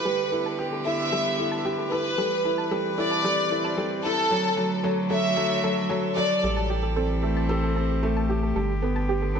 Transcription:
Already playing: G4 A4 B4
0.05 D3 G3 A4
0.32 B3 E4 A4
0.46 A5
0.59 G4
0.73 A4
0.84 E4 A4 E5
0.91 B4
1.12 G3 A4
1.39 E4 A4
1.52 A5
1.65 G4
1.78 A4
1.91 E4 A4 B4
2.18 E3 G3 A4
2.44 C4 E4 A4
2.58 A5
2.71 G3 A4
2.98 E4 A4 D5
3.11 A5
3.24 G3 A4
3.50 E4 A4
3.65 A5
3.77 G3 A4
4.04 E4 A4
4.17 A5
4.31 D3 F#3 A4
4.53 F#3 A3 A4
4.61 A4
4.66 F#4
4.84 F#3 A4
5.10 F#3 A4 E5
5.36 F#3 A4
5.63 F#3 A4
5.89 F#3 A4
6.17 F#3 A4 D5
6.43 A1 E3 G3 A4
6.56 A5
6.70 G4
6.79 C4 A4
6.96 C4 A4
7.23 A3 A4
7.37 A5
7.49 G4 A4
7.64 A4
7.76 C4 A4
8.03 A3 A4
8.17 A5
8.29 G4
8.43 A4
8.56 G1 D3 G3 A4
8.82 B3 A4
8.96 A5
9.09 G4
9.22 A4
9.35 B3 A4

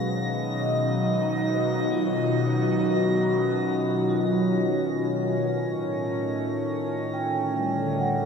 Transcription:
Already playing: B2 D#3 F#3 G#3 C#4 D#4 F5 A#6
0.62 D#5
1.92 F4
2.79 F#4
4.09 F4
5.41 A2
7.14 G5
7.24 D3
7.56 G3
8.00 F#5

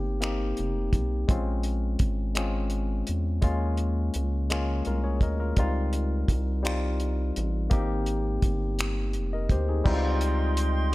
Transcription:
Already playing: G1 A#3 C4 D#4 G4
0.20 A#3 C4 D#4 G4, finger snap, closed hi-hat
0.57 F1, closed hi-hat
0.93 B1, kick, closed hi-hat
1.28 A#1 G#3 C4 C#4 F4, kick, closed hi-hat
1.63 closed hi-hat
1.99 G#1, kick, closed hi-hat
2.35 G#3 C4 C#4 F4, finger snap, closed hi-hat
2.70 closed hi-hat
3.07 E2, closed hi-hat
3.41 D#2 G#3 A#3 C#4 F4, kick, closed hi-hat
3.77 closed hi-hat
4.14 C#2, closed hi-hat
4.50 G#3 A#3 C#4 F4, finger snap, closed hi-hat
4.85 C2 F4 A#4, closed hi-hat
5.04 G#4 C#5
5.21 D2 A#4 D#5, kick, closed hi-hat
5.40 F4 A#4
5.57 C#2 G3 C4 D#4 F4, kick, closed hi-hat
5.93 closed hi-hat
6.28 C2, kick, closed hi-hat
6.63 G3 C4 D#4 F4, finger snap, closed hi-hat
7.00 closed hi-hat
7.36 A1, closed hi-hat
7.70 G#1 A#3 C4 D#4 G4, kick, closed hi-hat
8.06 closed hi-hat
8.42 G1, kick, closed hi-hat
8.79 finger snap, closed hi-hat
9.13 F1, closed hi-hat
9.33 A#4 D#5
9.49 D2 G4 C5, kick, closed hi-hat
9.69 D#4 G#4
9.84 C#2 G3 C4 D#4 E4 F4 D#5 G5 C6, kick, crash
9.94 F4
10.21 closed hi-hat
10.57 closed hi-hat

